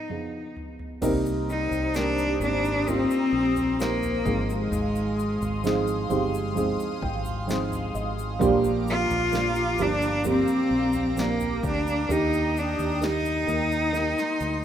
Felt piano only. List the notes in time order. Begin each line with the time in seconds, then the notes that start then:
Already playing: G#1 G#2 D#3 F3 B3 D#4 G#4 B4
0.09 F3 B3 D#4 G#4
1.01 C3 G3 A#3 C4 D#4 A#4
1.95 D#3 G3 A#3 C4 A#4
2.41 D#3 G3 A#3 C4 G4
2.87 G3 A#3 C4 D#4 F4
3.79 G3 A#3 C4 D#4 C5
4.25 G#2 F3 G#3 C4 D#4 G#4
5.64 F3 G#3 C4 D#4 G#4
6.09 F3 G#3 C4 D#4 G4
6.55 F3 G#3 C4 D#4 G#4
7.02 G5
7.47 F3 G#3 C4 D#4 G#4 F5
7.95 D#5
8.39 A#2 F3 G3 A#3 D4 G4
9.31 F3 G3 A#3 D4 G4
9.78 F3 G3 A#3 D4 G4
10.24 F3 G3 A#3 D4 G4
11.17 F3 G3 A#3 D4 A#4
12.09 D#3 A#3 G4
13.01 A#3 D#4 G4
13.47 A#3 D#4 A#4
13.93 A#3 D#4 A#4